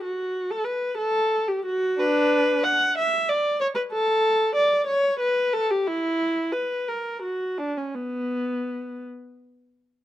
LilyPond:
\new Staff \with { instrumentName = "Viola" } { \time 6/8 \key fis \phrygian \tempo 4. = 61 fis'8. a'16 b'8 a'8. g'16 fis'8 | \key b \minor <d' b'>4 fis''8 e''8 d''8 cis''16 b'16 | a'4 d''8 cis''8 b'8 a'16 g'16 | e'4 b'8 ais'8 fis'8 d'16 cis'16 |
b4. r4. | }